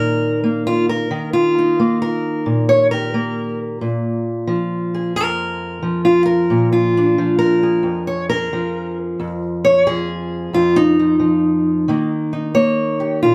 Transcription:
0.00 1.09 A#2 medium
0.00 1.09 D#3 medium
0.00 0.43 A#3 medium
0.00 1.10 D#4 soft
0.00 0.66 A#4 loud
0.44 1.79 A#3 medium
0.67 0.89 F4 loud
0.89 1.33 A#4 loud
1.11 3.78 D#3 medium
1.33 2.01 F4 medium
1.58 3.79 D#4 medium
1.80 3.14 A#3 medium
2.02 2.68 A#4 medium
2.46 3.78 A#2 medium
2.69 2.91 C#5 loud
2.91 3.79 G4 medium
2.91 3.59 A#4 loud
3.14 4.47 A#3 medium
3.81 5.16 A#2 medium
4.47 5.82 F3 medium
4.94 6.48 G#4 medium
5.16 6.50 F2 medium
5.16 6.04 A#4 loud
5.83 7.18 F3 medium
6.05 6.25 F4 loud
6.26 6.72 A#4 loud
6.50 7.85 A#2 medium
6.73 7.38 F4 medium
6.97 9.18 D4 medium
7.18 8.52 F3 medium
7.39 8.07 A#4 loud
7.63 8.30 G#4 soft
7.83 9.18 F2 medium
8.07 8.29 C#5 medium
8.30 9.17 G#4 soft
8.30 8.97 A#4 loud
8.53 9.86 F3 medium
9.20 10.52 F2 medium
9.65 9.87 C#5 loud
9.87 10.98 F3 medium
9.87 10.54 G#4 medium
10.53 11.88 F2 medium
10.53 10.77 F4 loud
10.76 12.11 D#4 loud
10.99 11.18 F3 soft
11.20 11.88 F3 medium
11.88 13.35 D#3 medium
11.88 12.54 A#3 medium
12.33 13.35 D#4 soft
12.54 13.35 A#3 medium
12.54 13.22 C#5 loud
13.00 13.35 G4 medium
13.23 13.35 A#2 medium
13.23 13.35 F4 loud

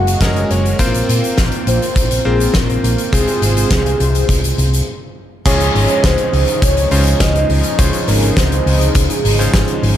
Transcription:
0.00 0.14 F#1 medium
0.00 0.18 G#3 medium
0.00 0.77 G#3 medium
0.00 0.77 A#3 medium
0.00 0.18 C#4 medium
0.00 0.18 F#4 medium
0.00 0.77 F#4 medium
0.00 0.18 A#4 medium
0.00 0.23 F#5 loud
0.07 closed hi-hat medium
0.21 0.43 F#1 medium
0.21 0.76 G#3 medium
0.21 0.76 C#4 medium
0.21 0.76 F#4 medium
0.21 0.76 A#4 loud
0.21 0.50 D#5 loud
0.21 kick loud
0.21 snare loud
0.21 closed hi-hat loud
0.36 closed hi-hat medium
0.51 0.72 F#1 medium
0.51 0.82 C#5 loud
0.51 closed hi-hat medium
0.65 closed hi-hat medium
0.79 1.01 A#1 loud
0.79 2.22 A#3 loud
0.79 2.22 C4 medium
0.79 2.22 F4 medium
0.79 3.10 F4 medium
0.79 1.38 A#4 medium
0.79 2.22 C5 loud
0.79 kick loud
0.79 closed hi-hat loud
0.94 closed hi-hat medium
1.09 1.20 A#2 loud
1.09 closed hi-hat medium
1.24 closed hi-hat medium
1.38 1.49 A#1 medium
1.38 kick loud
1.38 snare loud
1.38 closed hi-hat medium
1.52 closed hi-hat medium
1.67 1.78 A#1 loud
1.67 2.27 C5 loud
1.67 closed hi-hat medium
1.82 closed hi-hat soft
1.96 2.18 A#1 loud
1.96 kick loud
1.96 closed hi-hat medium
2.11 closed hi-hat medium
2.25 2.47 A#1 medium
2.25 3.09 A#3 medium
2.25 3.09 C4 medium
2.25 3.09 F4 medium
2.25 2.56 G#4 loud
2.25 3.09 C5 loud
2.40 closed hi-hat soft
2.54 2.76 A#1 loud
2.54 2.83 A#4 loud
2.54 kick loud
2.54 snare loud
2.54 closed hi-hat medium
2.70 closed hi-hat medium
2.84 2.94 A#1 medium
2.84 3.14 A#4 medium
2.84 closed hi-hat medium
2.98 closed hi-hat medium
3.13 3.24 C2 medium
3.13 4.86 C3 medium
3.13 4.84 G#3 medium
3.13 4.84 C4 medium
3.13 4.84 F4 medium
3.13 4.86 F4 medium
3.13 4.87 G#4 medium
3.13 4.86 G#4 medium
3.13 4.84 C5 medium
3.13 4.86 C5 medium
3.13 kick loud
3.13 closed hi-hat loud
3.27 closed hi-hat medium
3.42 3.63 G#1 medium
3.42 closed hi-hat medium
3.57 closed hi-hat medium
3.70 3.92 C2 medium
3.70 kick loud
3.70 snare loud
3.70 closed hi-hat medium
3.86 closed hi-hat medium
4.00 4.22 C2 medium
4.00 closed hi-hat medium
4.15 closed hi-hat medium
4.29 4.51 C2 medium
4.29 kick loud
4.29 closed hi-hat medium
4.44 closed hi-hat medium
4.58 4.80 C2 medium
4.58 closed hi-hat soft
4.73 closed hi-hat medium
5.46 5.67 C#2 loud
5.46 9.97 C#3 medium
5.46 9.97 F3 medium
5.46 6.88 G#3 loud
5.46 9.97 G#3 medium
5.46 6.88 C#4 medium
5.46 9.97 D#4 medium
5.46 6.88 F4 medium
5.46 6.88 G#4 loud
5.46 6.00 C#5 loud
5.46 6.06 C#5 loud
5.46 kick loud
5.46 closed hi-hat loud
5.46 crash loud
5.60 closed hi-hat medium
5.75 5.86 G#1 loud
5.75 open hi-hat medium
5.88 closed hi-hat medium
6.04 6.15 C#2 loud
6.04 6.62 C5 loud
6.04 6.58 C5 loud
6.04 kick loud
6.04 snare loud
6.04 closed hi-hat medium
6.18 closed hi-hat medium
6.33 6.44 C#2 loud
6.33 open hi-hat medium
6.48 closed hi-hat medium
6.62 6.84 C#2 loud
6.62 7.17 C#5 loud
6.62 7.22 C#5 loud
6.62 kick loud
6.62 closed hi-hat loud
6.77 closed hi-hat medium
6.91 7.13 C#2 medium
6.91 7.75 G#3 medium
6.91 7.75 C#4 medium
6.91 7.75 F4 medium
6.91 7.75 C5 medium
6.91 open hi-hat medium
7.07 closed hi-hat medium
7.20 7.42 C#2 loud
7.20 7.81 D#5 loud
7.20 7.75 D#5 loud
7.20 kick loud
7.20 snare loud
7.20 closed hi-hat loud
7.35 closed hi-hat medium
7.50 7.60 C#2 medium
7.50 open hi-hat medium
7.63 closed hi-hat medium
7.79 7.90 C#2 loud
7.79 9.36 G#3 medium
7.79 9.36 C#4 medium
7.79 9.36 F4 medium
7.79 9.36 C5 medium
7.79 8.06 C#5 loud
7.79 8.10 C#5 loud
7.79 kick loud
7.79 closed hi-hat loud
7.93 closed hi-hat medium
8.08 8.29 G#1 medium
8.08 8.35 A#4 medium
8.08 8.37 A#4 loud
8.08 open hi-hat medium
8.22 closed hi-hat medium
8.37 8.58 C#2 medium
8.37 8.91 C5 loud
8.37 8.97 C5 loud
8.37 kick loud
8.37 snare loud
8.37 closed hi-hat loud
8.52 closed hi-hat medium
8.66 8.88 C#2 loud
8.66 open hi-hat medium
8.81 closed hi-hat medium
8.95 9.06 C#2 medium
8.95 9.79 G#4 medium
8.95 9.83 G#4 medium
8.95 kick loud
8.95 closed hi-hat loud
9.10 closed hi-hat medium
9.25 9.46 G#1 medium
9.25 open hi-hat loud
9.39 9.97 G#3 medium
9.39 9.97 C#4 medium
9.39 9.97 F4 medium
9.39 9.97 C5 medium
9.39 closed hi-hat medium
9.54 9.64 G#1 loud
9.54 kick loud
9.54 snare loud
9.54 closed hi-hat loud
9.68 closed hi-hat medium
9.83 9.93 G#1 loud
9.83 open hi-hat medium

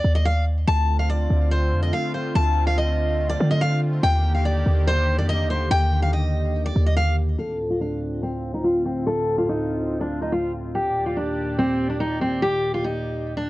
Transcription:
0.00 0.13 D5 medium
0.04 0.65 D#2 loud
0.15 0.24 D#5 medium
0.25 0.44 F5 medium
0.67 1.28 D2 loud
0.67 4.00 D3 medium
0.67 4.00 A3 medium
0.67 4.00 C4 medium
0.67 4.00 F4 medium
0.67 0.97 A5 loud
0.99 1.08 F5 medium
1.09 1.49 D5 medium
1.30 1.74 D2 loud
1.51 1.81 C5 medium
1.72 1.92 F2 loud
1.83 1.92 D#5 medium
1.93 2.12 F5 medium
2.14 2.33 C5 medium
2.35 3.36 D2 loud
2.35 2.65 A5 loud
2.67 2.76 F5 medium
2.78 3.27 D#5 medium
3.29 3.48 D5 medium
3.40 4.01 D3 loud
3.50 3.60 D#5 medium
3.61 3.80 F5 loud
4.03 4.63 D#2 loud
4.03 7.35 D3 medium
4.03 7.35 D#3 medium
4.03 7.35 A#3 medium
4.03 7.35 G4 medium
4.03 4.33 G5 loud
4.34 4.44 F5 medium
4.45 4.85 D5 medium
4.66 5.20 D#2 loud
4.87 5.17 C5 loud
5.18 5.46 F2 loud
5.18 5.28 D5 medium
5.29 5.48 D#5 medium
5.45 5.70 D#2 loud
5.50 5.69 C5 medium
5.71 6.72 D#2 loud
5.71 6.01 G5 loud
6.02 6.12 F5 medium
6.13 6.62 D#5 medium
6.66 6.84 D5 medium
6.76 7.36 D#2 loud
6.86 6.96 D#5 medium
6.96 7.15 F5 medium
7.38 10.71 D2 medium
7.38 10.71 A2 medium
7.38 10.71 C4 medium
7.38 10.71 F4 medium
7.38 7.68 A4 medium
7.70 7.80 F4 medium
7.81 8.20 D4 medium
8.23 8.52 C4 medium
8.54 8.63 D#4 medium
8.64 8.83 F4 medium
8.86 9.04 C4 medium
9.07 9.36 A4 loud
9.38 9.47 F4 medium
9.49 9.98 D#4 medium
10.01 10.19 D4 medium
10.22 10.31 D#4 medium
10.32 10.51 F4 medium
10.74 13.50 D#2 medium
10.74 13.50 A#2 medium
10.74 13.50 G4 medium
10.74 11.04 G4 loud
10.74 13.50 D5 medium
11.06 11.15 F4 medium
11.16 11.56 D4 medium
11.58 11.88 C4 loud
11.89 11.99 D4 medium
12.00 12.19 D#4 medium
12.21 12.40 C4 medium
12.42 12.72 G4 loud
12.74 12.83 F4 medium
12.84 13.33 D#4 medium
13.37 13.50 D4 medium

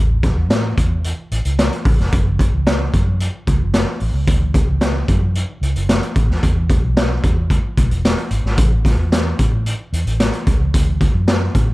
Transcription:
0.00 0.31 A1 medium
0.23 kick loud
0.23 snare soft
0.23 closed hi-hat medium
0.37 0.51 E2 medium
0.50 0.74 A2 medium
0.50 snare loud
0.50 closed hi-hat medium
0.77 1.12 E2 medium
0.77 kick medium
0.77 closed hi-hat medium
1.04 closed hi-hat medium
1.31 1.43 A1 medium
1.31 closed hi-hat medium
1.45 1.68 C#2 medium
1.45 closed hi-hat soft
1.59 snare medium
1.59 closed hi-hat medium
1.72 closed hi-hat soft
1.85 1.97 A1 medium
1.85 kick loud
1.85 open hi-hat soft
1.99 2.10 F1 medium
1.99 snare soft
2.12 2.47 F#1 loud
2.12 kick loud
2.12 closed hi-hat medium
2.39 kick loud
2.39 closed hi-hat medium
2.53 2.87 C#2 medium
2.67 snare loud
2.67 closed hi-hat medium
2.93 3.27 F#2 medium
2.93 kick medium
2.93 closed hi-hat medium
3.20 closed hi-hat medium
3.47 3.58 C#2 medium
3.47 kick medium
3.47 closed hi-hat medium
3.61 3.83 F#1 medium
3.74 snare medium
3.74 closed hi-hat medium
4.00 4.13 A1 loud
4.00 open hi-hat soft
4.14 4.25 C#2 medium
4.27 4.62 D2 loud
4.27 kick loud
4.27 closed hi-hat medium
4.54 kick loud
4.54 closed hi-hat medium
4.68 5.02 C#2 medium
4.81 snare loud
4.81 closed hi-hat medium
5.08 5.42 F#2 medium
5.08 kick medium
5.08 closed hi-hat medium
5.35 closed hi-hat medium
5.61 5.73 C#2 medium
5.61 closed hi-hat medium
5.76 5.99 F#1 medium
5.76 closed hi-hat medium
5.89 snare medium
5.89 closed hi-hat medium
6.03 closed hi-hat soft
6.16 6.27 A1 medium
6.16 kick medium
6.16 closed hi-hat medium
6.29 6.41 D#2 medium
6.29 snare soft
6.43 6.77 E2 medium
6.43 kick medium
6.43 closed hi-hat medium
6.70 kick medium
6.70 closed hi-hat medium
6.83 7.18 B1 medium
6.97 snare loud
6.97 closed hi-hat medium
7.23 7.58 E2 medium
7.23 kick medium
7.23 closed hi-hat medium
7.50 kick medium
7.50 closed hi-hat medium
7.77 7.89 B1 medium
7.77 kick medium
7.77 closed hi-hat medium
7.90 8.13 E1 medium
7.90 closed hi-hat soft
8.05 snare loud
8.05 closed hi-hat medium
8.18 closed hi-hat soft
8.31 8.42 G#1 medium
8.31 closed hi-hat medium
8.44 8.56 G#1 medium
8.44 snare soft
8.57 8.92 A1 loud
8.57 kick loud
8.57 closed hi-hat medium
8.85 kick medium
8.85 snare soft
8.85 closed hi-hat medium
8.97 9.32 E2 medium
9.12 snare loud
9.12 closed hi-hat medium
9.39 9.73 A2 medium
9.39 kick medium
9.39 closed hi-hat medium
9.66 closed hi-hat medium
9.93 10.04 E2 medium
9.93 closed hi-hat medium
10.06 10.29 A1 medium
10.06 closed hi-hat medium
10.20 snare medium
10.20 closed hi-hat loud
10.33 closed hi-hat soft
10.47 10.58 C#2 loud
10.47 kick medium
10.47 closed hi-hat medium
10.60 10.71 C#2 medium
10.74 11.08 D2 loud
10.74 kick loud
10.74 closed hi-hat medium
11.01 kick medium
11.01 closed hi-hat medium
11.14 11.48 F#2 medium
11.28 snare loud
11.28 closed hi-hat medium
11.55 11.74 A2 medium
11.55 kick medium
11.55 closed hi-hat medium

